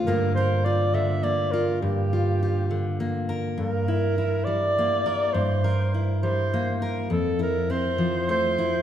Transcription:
<<
  \new Staff \with { instrumentName = "Alto saxophone" } { \time 6/8 \key c \mixolydian \tempo 4. = 68 bes'8 c''8 d''8 e''8 d''8 bes'8 | g'2 r4 | bes'4. d''4. | c''4 r8 c''4 r8 |
a'8 bes'8 c''4 c''4 | }
  \new Staff \with { instrumentName = "Steel-string acoustic guitar" } { \time 6/8 \key c \mixolydian << { <d bes f'>8 bes'8 f'4 bes8 f'8 | r8 f'8 f'4 bes8 bes'8 | r8 e'8 e'4 bes8 bes'8 | r8 bes'8 e'4 bes8 bes'8 |
r8 e'8 c'4 a8 e'8 | } \\ { g,4. d4. | g,4. d4. | g,4. g4. | g,4. g4. |
f,4. f4. | } >> }
>>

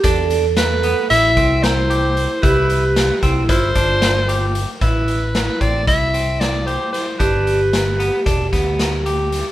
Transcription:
<<
  \new Staff \with { instrumentName = "Soprano saxophone" } { \time 9/8 \key a \minor \tempo 4. = 75 r4 b'4 e''4 c''4. | b'4. r8 c''2 r8 | b'4. d''8 e''4 d''8 c''8 c''8 | b'2 r2 r8 | }
  \new Staff \with { instrumentName = "Vibraphone" } { \time 9/8 \key a \minor a'2 e'2~ e'8 | g'4. e'8 f'2 r8 | e'1~ e'8 | g'1~ g'8 | }
  \new Staff \with { instrumentName = "Clean electric guitar" } { \time 9/8 \key a \minor d'4 r8 b8 e'8 c'4 g'4 | e'4 r8 c'8 e'8 d'4 g'4 | e'4 r8 c'8 e'8 c'4 g'4 | d'4 r8 b8 d'8 b4 g'4 | }
  \new Staff \with { instrumentName = "Fretless electric bass" } { \clef bass \time 9/8 \key a \minor e,2 a,,8 c,2 | c,4. c,8 g,,8 g,,2 | a,,4. a,,8 c,2 r8 | g,,2 e,,8 d,2 | }
  \new DrumStaff \with { instrumentName = "Drums" } \drummode { \time 9/8 <hh bd>8 hh8 <hh sn>8 hh8 hh8 <hh bd>8 <hh sn>8 hh8 hh8 | <hh bd>8 hh8 <hh sn>8 <hh bd sn>8 <hh bd>8 <hh bd>8 <hh sn>8 hh8 hh8 | <hh bd>8 hh8 <hh sn>8 <hh bd>8 <hh bd>8 hh8 <hh sn>8 hh8 <hh sn>8 | <hh bd>8 hh8 <hh sn>8 hh8 <hh bd>8 <hh bd sn>8 <hh sn>8 hh8 <hh sn>8 | }
>>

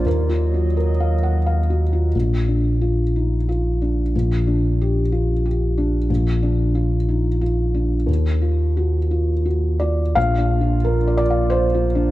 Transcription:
<<
  \new Staff \with { instrumentName = "Felt piano" } { \time 3/4 \key bes \major \tempo 4 = 90 << { bes'2~ bes'8 r8 | r2. | r2. | r2. |
r2 r8 d''8 | f''4. d''8 c''4 | } \\ { \tuplet 3/2 { ees,8 f'8 ges'8 bes'8 f''8 ges''8 f''8 ges'8 f'8 } | bes,,8 d'8 f'8 ees'8 f'8 d'8 | bes,,8 d'8 g'8 f'8 g'8 d'8 | bes,,8 d'8 f'8 ees'8 f'8 d'8 |
ees,8 f'8 ges'8 f'8 ges'8 f'8 | \tuplet 3/2 { bes,,8 d'8 f'8 bes'8 d''8 f''8 d''8 f'8 d'8 } | } >> }
  \new Staff \with { instrumentName = "Ambient pad" } { \time 3/4 \key bes \major <ges bes ees''>2. | r2. | r2. | r2. |
r2. | <bes f' d''>2. | }
  \new Staff \with { instrumentName = "Sub bass" } { \clef bass \time 3/4 \key bes \major ees,2. | bes,,2.~ | bes,,2.~ | bes,,2. |
ees,2. | bes,,2. | }
>>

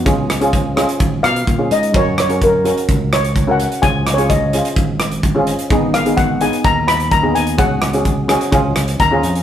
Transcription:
<<
  \new Staff \with { instrumentName = "Steel pan" } { \time 4/4 \key cis \mixolydian \tempo 4 = 128 r2 r8 eis''4 dis''8 | cis''8 cis''8 ais'4 r8 cis''8~ \tuplet 3/2 { cis''8 fis''4 } | \tuplet 3/2 { gis''4 cis''8 } dis''4 r2 | r8 eis''8 fis''8 gis''8 ais''8 b''8 ais''8 gis''8 |
fis''4. r4. ais''4 | }
  \new Staff \with { instrumentName = "Steel pan" } { \time 4/4 \key cis \mixolydian <cis' eis' gis'>8 r16 <cis' eis' gis'>8 r16 <cis' eis' gis'>4 r8. <cis' eis' gis'>8 r16 | <cis' fis' ais'>8 r16 <cis' fis' ais'>8 r16 <cis' fis' ais'>4 r8. <cis' fis' ais'>8 r16 | <cis' eis' gis'>8 r16 <cis' eis' gis'>8 r16 <cis' eis' gis'>4 r8. <cis' eis' gis'>8 r16 | <b dis' gis'>8 r16 <b dis' gis'>8 r16 <b dis' gis'>4 r8. <b dis' gis'>8 r16 |
<cis' fis' gis'>8 r16 <cis' fis' gis'>8 r16 <cis' fis' gis'>8 <cis' eis' gis'>4 r16 <cis' eis' gis'>8 r16 | }
  \new Staff \with { instrumentName = "Fingered electric bass" } { \clef bass \time 4/4 \key cis \mixolydian cis,2 gis,,8 b,8 ais,8 gis,8 | fis,2 cis,2 | cis,2 gis,,2 | gis,,2 dis,2 |
cis,2 cis,8 cis,8 dis,8 eis,8 | }
  \new DrumStaff \with { instrumentName = "Drums" } \drummode { \time 4/4 <hh bd>8 <hh ss>16 hh16 <hh bd>8 <hh ss>16 hh16 <hh bd>8 <hh ss>16 hh16 <hh bd>8 hh16 hh16 | <hh bd>8 <hh ss>16 hh16 <hh bd>8 hh16 hh16 <hh bd>8 <hh ss>16 hh16 <hh bd>8 hh16 hh16 | <hh bd>8 <hh ss>16 hh16 <hh bd>8 hh16 hh16 <hh bd>8 <hh ss>16 hh16 <hh bd>8 hh16 hh16 | <hh bd>8 <hh ss>16 hh16 <hh bd>8 hh16 hh16 <hh bd>8 <hh ss>16 hh16 <hh bd>8 hh16 hh16 |
<hh bd>8 <hh ss>16 hh16 <hh bd>8 <hh ss>16 hh16 <hh bd>8 <hh ss>16 hh16 <hh bd>8 hh16 hh16 | }
>>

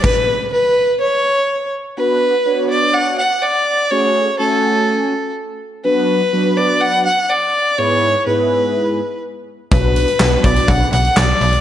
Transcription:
<<
  \new Staff \with { instrumentName = "Fiddle" } { \time 4/4 \key b \dorian \tempo 4 = 124 b'4 b'4 cis''4. r8 | b'4. d''8 fis''8 fis''8 d''4 | cis''4 a'2 r4 | b'4. d''8 fis''8 fis''8 d''4 |
cis''4 b'2 r4 | b'4. d''8 fis''8 fis''8 d''4 | }
  \new Staff \with { instrumentName = "Analog polysynth" } { \time 4/4 \key b \dorian r1 | <b d' fis' b'>8. r16 <b d' fis' cis''>4. r4. | <a cis' fis' gis'>8. r16 <a cis' fis' gis''>4. r4. | <fis b d' fis' b'>8. r16 <fis b d' fis' b'>4. r4. |
<gis, b e' gis' b'>8. r16 <gis, b e' gis' b'>4. r4. | <b d' fis' b'>8. r16 <b d' fis' b'>4. r4. | }
  \new Staff \with { instrumentName = "FM bass" } { \clef bass \time 4/4 \key b \dorian r1 | r1 | r1 | r1 |
r1 | b,,4 b,,8 b,,8 b,,8 b,,8 b,,8 b,,8 | }
  \new DrumStaff \with { instrumentName = "Drums" } \drummode { \time 4/4 <cymc bd>4 r4 r4 r4 | r4 r4 r4 r4 | r4 r4 r4 r4 | r4 r4 r4 r4 |
r4 r4 r4 r4 | <hh bd>8 hh16 hh16 <hc sn>8 <hh bd>16 hh16 <hh bd>8 hh16 hh16 <hc sn>8 hho16 hh16 | }
>>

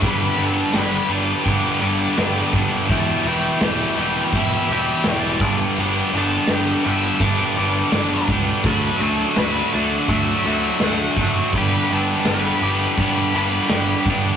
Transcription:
<<
  \new Staff \with { instrumentName = "Lead electric guitar" } { \time 4/4 \key g \major \tempo 4 = 83 b'8 a'8 b'8 d''8 d''4. r8 | a''8 g''4. e''8 e''8 d''8. r16 | r8 a''8 g''8 e''8 d''4. r8 | b'8 a'8 b'8 d''8 e''8 e''8 fis''8. r16 |
b'8 a'8 b'4 b'4. r8 | }
  \new Staff \with { instrumentName = "Distorted electric guitar" } { \clef bass \time 4/4 \key g \major <g, d g b d' g'>8 <g, d g b d' g'>8 <g, d g b d' g'>8 <g, d g b d' g'>8 <g, d g b d' g'>8 <g, d g b d' g'>8 <g, d g b d' g'>8 <g, d g b d' g'>8 | <e, b, e g e' g'>8 <e, b, e g e' g'>8 <e, b, e g e' g'>8 <e, b, e g e' g'>8 <e, b, e g e' g'>8 <e, b, e g e' g'>8 <e, b, e g e' g'>8 <g, d g b d' g'>8 | <g, d g b d' g'>8 <g, d g b d' g'>8 <g, d g b d' g'>8 <g, d g b d' g'>8 <g, d g b d' g'>8 <g, d g b d' g'>8 <g, d g b d' g'>8 <g, d g b d' g'>8 | <d fis a d' fis'>8 <d fis a d' fis'>8 <d fis a d' fis'>8 <d fis a d' fis'>8 <d fis a d' fis'>8 <d fis a d' fis'>8 <d fis a d' fis'>8 <d fis a d' fis'>8 |
<g, d g b d' g'>8 <g, d g b d' g'>8 <g, d g b d' g'>8 <g, d g b d' g'>8 <g, d g b d' g'>8 <g, d g b d' g'>8 <g, d g b d' g'>8 <g, d g b d' g'>8 | }
  \new Staff \with { instrumentName = "Picked electric bass" } { \clef bass \time 4/4 \key g \major g,,8 g,,8 g,,8 g,,8 g,,8 g,,8 g,,8 g,,8 | e,,8 e,,8 e,,8 e,,8 e,,8 e,,8 e,,8 g,,8 | g,,8 g,,8 g,,8 g,,8 g,,8 g,,8 g,,8 cis,8 | d,8 d,8 d,8 d,8 d,8 d,8 d,8 fis,,8 |
g,,8 g,,8 g,,8 g,,8 g,,8 g,,8 g,,8 g,,8 | }
  \new DrumStaff \with { instrumentName = "Drums" } \drummode { \time 4/4 <cymc bd>4 <cymc sn>4 <cymc bd>4 <cymc sn>8 bd8 | <cymc bd>4 <cymc sn>4 <cymc bd>4 <cymc sn>8 bd8 | cymc4 <cymc sn>4 <cymc bd>4 <cymc sn>8 bd8 | <cymc bd>4 <cymc sn>4 <cymc bd>4 <cymc sn>8 bd8 |
<cymc bd>4 <cymc sn>4 <cymc bd>4 <cymc sn>8 bd8 | }
>>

